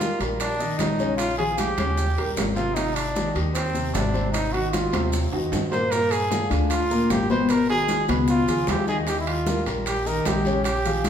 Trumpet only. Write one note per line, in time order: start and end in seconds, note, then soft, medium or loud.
0.00 0.20 F4 loud
0.40 0.80 D4 medium
0.79 1.16 D#4 medium
1.17 1.36 F4 loud
1.38 1.59 G#4 medium
1.58 2.37 G4 loud
2.56 2.76 F4 medium
2.75 2.96 D#4 medium
2.95 3.35 D4 medium
3.54 3.96 C4 medium
3.94 4.32 D4 medium
4.32 4.54 D#4 medium
4.53 4.71 F#4 medium
4.72 5.21 F4 medium
5.72 5.93 C5 loud
5.91 6.13 A#4 loud
6.11 6.51 G#4 loud
6.71 7.13 F4 medium
7.12 7.30 G4 medium
7.31 7.53 C5 medium
7.51 7.69 A#4 medium
7.70 8.06 G#4 loud
8.30 8.71 F4 loud
8.69 8.88 G4 medium
8.89 8.97 G#4 medium
9.08 9.19 G4 medium
9.20 9.28 E4 medium
9.27 9.67 F4 medium
9.88 10.09 G4 medium
10.07 10.29 A#4 medium
10.27 10.65 G4 medium
10.65 11.08 G4 medium
11.06 11.10 G#4 medium